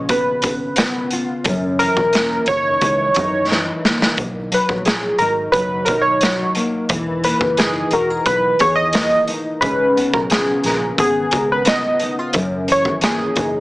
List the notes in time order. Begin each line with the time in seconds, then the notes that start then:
Already playing: A#1 C#3 F4 G#4
0.09 B3 B4, kick, closed hi-hat
0.42 kick, closed hi-hat
0.76 B3, snare, closed hi-hat
1.11 F4, closed hi-hat
1.44 F#1 F#2, kick, closed hi-hat
1.79 E3 A#4, closed hi-hat
1.96 E1, kick
2.13 A#3, snare, closed hi-hat
2.46 F#1 C#5, kick, closed hi-hat
2.50 D#4
2.81 C#2 E3, kick, closed hi-hat
3.14 F#2 D#4, kick, closed hi-hat
3.52 E3, snare
3.85 A#3, snare
4.02 snare
4.17 B1, kick, closed hi-hat
4.51 F#3 B4, closed hi-hat
4.69 A#1, kick
4.85 G#4, snare, closed hi-hat
5.18 G#1 D#4 A#4, closed hi-hat
5.52 F#1 F#3 B4, kick, closed hi-hat
5.85 B1 D#4 A#4, kick, closed hi-hat
6.01 C#5
6.21 F#3, snare, closed hi-hat
6.55 A#3, closed hi-hat
6.89 E1 E3, kick, closed hi-hat
7.24 A#3 B4, closed hi-hat
7.41 F#1, kick
7.57 D#4 G#4, snare, closed hi-hat
7.91 E1 F#4 A#4, closed hi-hat
8.10 G#4
8.26 B1 B4, kick, closed hi-hat
8.59 E2 G#4 C#5, kick, closed hi-hat
8.76 D#5
8.93 A#3, snare, closed hi-hat
9.28 D#4, closed hi-hat
9.61 C#2 C#3 B4, kick, closed hi-hat
9.96 B3, closed hi-hat
10.13 B1 A#4, kick
10.30 F4 G#4, snare, closed hi-hat
10.64 A#1 A#4, snare, closed hi-hat
10.98 G#1 B3 G#4, kick, closed hi-hat
11.31 C#2 A#4, kick, closed hi-hat
11.52 B4
11.65 B3 D#5, snare, closed hi-hat
11.99 D#4, closed hi-hat
12.19 F4
12.33 F#1 F#2, kick, closed hi-hat
12.68 E3 C#5, closed hi-hat
12.85 G#1, kick
13.01 A#3 G#4, snare, closed hi-hat
13.36 F#1 D#4, kick, closed hi-hat